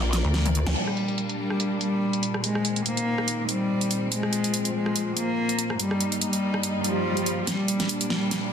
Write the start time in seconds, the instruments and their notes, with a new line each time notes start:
Already playing: wobble bass A#1, string section A#3 F4 A#4 D5
0.13 snare, closed hi-hat
0.25 wobble bass D2
0.34 snare
0.46 closed hi-hat, high tom
0.55 closed hi-hat
0.67 wobble bass D2, snare, zap
0.76 string section A#2 G3 A#3 D4, cello G3, closed hi-hat, crash
0.87 cross-stick
0.97 closed hi-hat
1.08 closed hi-hat
1.18 closed hi-hat
1.29 closed hi-hat
1.39 cello G3
1.50 cross-stick
1.60 closed hi-hat
1.81 cello G3, closed hi-hat
2.13 closed hi-hat
2.23 closed hi-hat
2.34 cross-stick
2.44 string section D#3 C4, cello G#3, closed hi-hat
2.55 cross-stick
2.65 closed hi-hat
2.76 closed hi-hat
2.86 cello A#3, closed hi-hat
2.97 closed hi-hat
3.18 cross-stick
3.28 closed hi-hat
3.49 cello G3, closed hi-hat
3.81 closed hi-hat
3.91 closed hi-hat
4.12 string section F3, cello G#3, closed hi-hat
4.23 cross-stick
4.33 closed hi-hat
4.44 closed hi-hat
4.54 closed hi-hat
4.65 closed hi-hat
4.75 cello G#3
4.86 cross-stick
4.96 closed hi-hat
5.17 cello A#3, closed hi-hat
5.49 closed hi-hat
5.59 closed hi-hat
5.70 cross-stick
5.79 string section G2 G3 A#3 D#4, cello G3, closed hi-hat
5.91 cross-stick
6.01 closed hi-hat
6.12 closed hi-hat
6.21 cello G3, closed hi-hat
6.33 closed hi-hat
6.54 cross-stick
6.63 closed hi-hat, swell
6.84 cello F3, closed hi-hat
7.17 closed hi-hat
7.26 closed hi-hat
7.47 string section A#2 G3 A#3 D4, cello G3, snare, closed hi-hat, riser
7.68 closed hi-hat
7.80 snare, closed hi-hat
7.89 closed hi-hat
8.01 closed hi-hat
8.10 cello G3, snare
8.31 snare, closed hi-hat